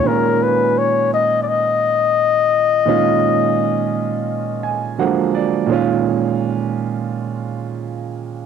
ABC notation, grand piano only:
X:1
M:4/4
L:1/8
Q:"Swing 16ths" 1/4=85
K:Ebm
V:1 name="Grand piano"
z8 | z4 z a g =d | z8 |]
V:2 name="Grand piano" clef=bass
[B,,E,A,DF]8 | [B,,E,A,DF]6 [=D,F,G,A,B,]2 | [B,,E,A,DF]8 |]